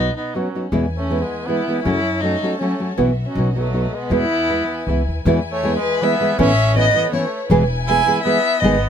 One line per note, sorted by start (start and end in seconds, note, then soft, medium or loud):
0.00 0.15 B3 medium
0.00 0.16 D#4 medium
0.16 0.36 B3 medium
0.16 0.38 D#4 medium
0.34 0.47 F#3 soft
0.34 0.64 F#3 medium
0.34 0.47 B3 medium
0.34 0.65 C#4 medium
0.34 0.47 D#4 soft
0.34 0.47 F#4 medium
0.55 0.66 F#3 soft
0.55 0.66 B3 soft
0.55 0.66 D#4 medium
0.55 0.66 F#4 soft
0.72 0.84 E2 medium
0.72 1.21 E2 medium
0.72 0.85 B2 medium
0.72 0.85 E3 medium
0.72 0.85 G#3 medium
0.72 0.85 B3 medium
0.72 1.84 E4 medium
0.72 0.85 E4 medium
0.72 1.85 B4 medium
0.72 1.85 G#5 medium
0.97 1.23 A3 medium
0.97 1.24 C#4 medium
1.10 1.22 E3 soft
1.10 1.23 G#3 medium
1.10 1.23 B3 medium
1.10 1.23 E4 medium
1.22 1.48 G#3 medium
1.22 1.48 B3 medium
1.46 1.60 E3 medium
1.46 1.61 G#3 soft
1.46 1.82 B3 medium
1.46 1.61 B3 medium
1.46 1.83 E4 medium
1.46 1.61 E4 medium
1.68 1.79 E3 soft
1.68 1.79 G#3 soft
1.68 1.79 B3 medium
1.68 1.79 E4 medium
1.82 1.97 F#2 medium
1.82 2.34 F#2 medium
1.82 1.97 C#3 medium
1.82 1.98 F#3 medium
1.82 1.97 A3 medium
1.82 2.23 C#4 medium
1.82 1.98 C#4 medium
1.82 2.22 E4 loud
1.82 1.98 F#4 medium
1.82 4.09 F#4 medium
1.82 2.97 C#5 medium
1.82 2.97 A5 medium
2.21 2.35 F#3 medium
2.21 2.60 A3 medium
2.21 2.35 A3 medium
2.21 2.35 C#4 medium
2.21 2.58 D#4 medium
2.21 2.36 F#4 medium
2.43 2.53 F#3 soft
2.43 2.54 A3 medium
2.43 2.54 C#4 medium
2.43 2.54 F#4 soft
2.59 2.73 F#3 medium
2.59 2.88 A3 medium
2.59 2.73 A3 medium
2.59 2.87 C#4 medium
2.59 2.73 C#4 medium
2.59 2.74 F#4 medium
2.80 2.91 F#3 medium
2.80 2.91 A3 soft
2.80 2.91 C#4 medium
2.80 2.92 F#4 soft
2.97 3.22 B1 medium
2.97 3.10 B2 medium
2.97 3.10 E3 loud
2.97 4.10 B3 medium
2.97 3.10 B3 medium
2.97 3.10 E4 medium
2.97 3.10 F#4 medium
2.97 3.35 E5 medium
3.26 3.48 F#3 medium
3.26 3.48 C#4 medium
3.34 3.85 B1 medium
3.34 3.48 F#3 medium
3.34 3.48 B3 medium
3.34 3.49 D#4 medium
3.34 3.49 F#4 medium
3.34 4.10 D#5 medium
3.55 3.66 F#3 soft
3.55 3.96 F#3 medium
3.55 3.95 A3 medium
3.55 3.67 B3 soft
3.55 3.67 D#4 soft
3.55 3.67 F#4 soft
3.73 3.85 F#3 soft
3.73 3.86 B3 medium
3.73 3.86 D#4 medium
3.73 3.86 F#4 medium
3.94 4.15 G#3 medium
3.94 4.13 B3 medium
4.10 4.60 E2 medium
4.10 4.23 E2 medium
4.10 4.23 B2 medium
4.10 4.23 E3 medium
4.10 4.23 G#3 medium
4.10 4.23 B3 medium
4.10 4.89 B3 medium
4.10 5.24 E4 medium
4.10 4.88 E4 loud
4.10 4.23 E4 medium
4.10 5.24 B4 medium
4.10 5.24 G#5 medium
4.49 4.61 E3 medium
4.49 4.62 G#3 medium
4.49 4.62 B3 soft
4.49 4.62 E4 medium
4.87 5.06 C#2 medium
4.87 5.00 E3 medium
4.87 5.00 G#3 medium
4.87 5.01 B3 medium
4.87 5.01 E4 medium
5.08 5.24 D#2 medium
5.25 5.75 E2 loud
5.25 5.38 E2 loud
5.25 5.38 B2 loud
5.25 5.38 E3 medium
5.25 5.39 G#3 medium
5.25 5.39 B3 medium
5.25 6.37 E4 medium
5.25 5.39 E4 loud
5.25 8.89 B4 medium
5.25 6.37 G#5 medium
5.52 5.75 A3 medium
5.52 5.76 C#5 medium
5.63 5.76 E3 medium
5.63 5.76 G#3 medium
5.63 5.76 B3 medium
5.63 5.77 E4 medium
5.76 6.03 G#3 medium
5.76 6.05 B4 loud
6.01 6.14 E3 medium
6.01 6.14 G#3 medium
6.01 6.39 B3 medium
6.01 6.14 B3 medium
6.01 6.14 E4 medium
6.01 6.40 E5 medium
6.20 6.31 E3 medium
6.20 6.32 G#3 medium
6.20 6.32 B3 medium
6.20 6.32 E4 medium
6.39 6.87 A1 loud
6.39 6.50 A2 loud
6.39 6.51 E3 medium
6.39 6.51 B3 medium
6.39 6.51 C#4 loud
6.39 6.74 C#4 loud
6.39 6.51 E4 medium
6.39 7.49 A4 medium
6.39 7.49 C#5 medium
6.39 6.74 E5 loud
6.75 6.87 E3 medium
6.75 6.88 B3 medium
6.75 7.11 B3 medium
6.75 6.88 C#4 medium
6.75 6.88 E4 medium
6.75 7.11 D#5 loud
6.94 7.05 E3 medium
6.94 7.05 B3 medium
6.94 7.06 C#4 medium
6.94 7.06 E4 medium
7.12 7.24 E3 medium
7.12 7.40 A3 medium
7.12 7.24 B3 medium
7.12 7.25 C#4 medium
7.12 7.25 E4 medium
7.12 7.39 C#5 medium
7.50 7.99 E1 medium
7.50 7.62 E2 loud
7.50 7.62 B2 loud
7.50 7.62 E3 loud
7.50 7.62 G#3 loud
7.50 7.62 B3 loud
7.50 8.62 E4 medium
7.50 7.62 G#4 loud
7.50 8.61 G#5 loud
7.87 8.00 E3 medium
7.87 8.00 G#3 medium
7.87 8.00 B3 medium
7.87 8.22 E4 medium
7.87 8.01 G#4 medium
7.87 8.22 G#5 loud
8.06 8.17 E3 medium
8.06 8.18 G#3 medium
8.06 8.18 B3 medium
8.06 8.18 G#4 medium
8.23 8.37 E3 medium
8.23 8.37 G#3 medium
8.23 8.60 B3 loud
8.23 8.37 B3 medium
8.23 8.38 G#4 medium
8.23 8.62 E5 loud
8.60 8.89 G#1 medium
8.60 8.75 G#2 medium
8.60 8.89 G#3 medium
8.60 8.89 B3 medium
8.60 8.89 D#4 medium
8.60 8.89 D#5 loud
8.64 8.75 D#3 medium
8.64 8.75 G#3 medium
8.64 8.75 B3 medium
8.64 8.76 D#4 loud
8.64 8.76 G#4 loud